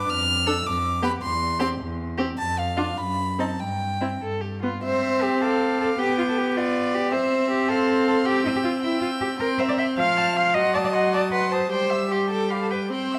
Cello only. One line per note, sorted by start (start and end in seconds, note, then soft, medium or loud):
0.09 0.56 F2 medium
0.66 1.13 F2 medium
1.23 1.70 E2 medium
1.80 2.28 E2 medium
2.39 2.88 F2 medium
2.99 3.49 F#2 medium
3.59 4.11 G2 medium
4.22 4.73 G2 soft
4.83 5.24 C5 medium
5.23 5.43 G4 medium
5.42 5.80 A4 medium
5.81 5.88 A4 medium
6.00 6.18 G4 medium
6.18 6.22 F4 medium
6.29 6.39 A4 medium
6.38 6.59 G4 medium
6.57 6.96 F4 medium
6.95 7.14 G4 medium
7.13 7.51 C5 medium
7.51 7.70 G4 medium
7.69 8.07 A4 medium
8.08 8.15 A4 medium
8.26 8.44 G4 medium
8.45 8.49 E4 medium
8.56 8.60 G4 medium
8.64 8.72 F4 medium
8.84 9.00 E4 medium
9.01 9.09 F4 medium
9.21 9.29 G4 medium
9.40 9.47 A#4 medium
9.58 9.62 C5 medium
9.69 9.73 D5 medium
9.78 9.86 E5 medium
9.98 10.35 F5 medium
10.36 10.56 F5 medium
10.54 10.73 D#5 medium
10.74 10.78 D5 medium
10.85 10.88 D5 medium
10.93 11.12 D#5 medium
11.14 11.21 D5 medium
11.33 11.51 B4 medium
11.51 11.71 C5 medium
11.71 12.10 C5 medium
12.11 12.30 G4 medium
12.31 12.50 A4 medium
12.51 12.61 G4 medium
12.62 12.71 A4 medium
12.71 12.79 B4 medium
12.92 13.19 C5 medium